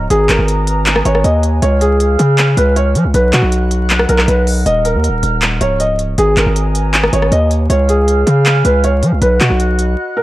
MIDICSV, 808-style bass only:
0, 0, Header, 1, 2, 480
1, 0, Start_track
1, 0, Tempo, 379747
1, 130, Time_signature, 4, 2, 24, 8
1, 12929, End_track
2, 0, Start_track
2, 0, Title_t, "808-style bass"
2, 0, Program_c, 0, 38
2, 130, Note_on_c, 0, 32, 114
2, 361, Note_off_c, 0, 32, 0
2, 370, Note_on_c, 0, 32, 106
2, 483, Note_off_c, 0, 32, 0
2, 491, Note_on_c, 0, 32, 107
2, 1297, Note_off_c, 0, 32, 0
2, 1330, Note_on_c, 0, 32, 105
2, 1561, Note_off_c, 0, 32, 0
2, 1571, Note_on_c, 0, 39, 107
2, 2031, Note_off_c, 0, 39, 0
2, 2051, Note_on_c, 0, 37, 113
2, 2741, Note_off_c, 0, 37, 0
2, 2770, Note_on_c, 0, 49, 102
2, 3231, Note_off_c, 0, 49, 0
2, 3251, Note_on_c, 0, 37, 111
2, 3731, Note_on_c, 0, 53, 101
2, 3750, Note_off_c, 0, 37, 0
2, 3850, Note_on_c, 0, 37, 101
2, 3869, Note_off_c, 0, 53, 0
2, 3964, Note_off_c, 0, 37, 0
2, 3971, Note_on_c, 0, 35, 114
2, 4201, Note_off_c, 0, 35, 0
2, 4210, Note_on_c, 0, 47, 107
2, 4325, Note_off_c, 0, 47, 0
2, 4330, Note_on_c, 0, 35, 103
2, 5137, Note_off_c, 0, 35, 0
2, 5171, Note_on_c, 0, 35, 105
2, 5401, Note_off_c, 0, 35, 0
2, 5409, Note_on_c, 0, 35, 113
2, 5871, Note_off_c, 0, 35, 0
2, 5890, Note_on_c, 0, 27, 104
2, 6251, Note_on_c, 0, 39, 104
2, 6270, Note_off_c, 0, 27, 0
2, 6431, Note_on_c, 0, 27, 103
2, 6450, Note_off_c, 0, 39, 0
2, 6602, Note_off_c, 0, 27, 0
2, 6611, Note_on_c, 0, 27, 108
2, 7071, Note_off_c, 0, 27, 0
2, 7092, Note_on_c, 0, 25, 104
2, 7782, Note_off_c, 0, 25, 0
2, 7811, Note_on_c, 0, 32, 111
2, 8041, Note_off_c, 0, 32, 0
2, 8050, Note_on_c, 0, 32, 110
2, 8162, Note_off_c, 0, 32, 0
2, 8170, Note_on_c, 0, 32, 108
2, 8976, Note_off_c, 0, 32, 0
2, 9010, Note_on_c, 0, 32, 107
2, 9240, Note_off_c, 0, 32, 0
2, 9249, Note_on_c, 0, 39, 110
2, 9710, Note_off_c, 0, 39, 0
2, 9728, Note_on_c, 0, 37, 112
2, 10420, Note_off_c, 0, 37, 0
2, 10449, Note_on_c, 0, 49, 108
2, 10910, Note_off_c, 0, 49, 0
2, 10930, Note_on_c, 0, 37, 110
2, 11409, Note_on_c, 0, 53, 102
2, 11428, Note_off_c, 0, 37, 0
2, 11529, Note_on_c, 0, 37, 101
2, 11548, Note_off_c, 0, 53, 0
2, 11644, Note_off_c, 0, 37, 0
2, 11650, Note_on_c, 0, 35, 112
2, 11880, Note_off_c, 0, 35, 0
2, 11891, Note_on_c, 0, 47, 109
2, 12006, Note_off_c, 0, 47, 0
2, 12011, Note_on_c, 0, 35, 106
2, 12586, Note_off_c, 0, 35, 0
2, 12929, End_track
0, 0, End_of_file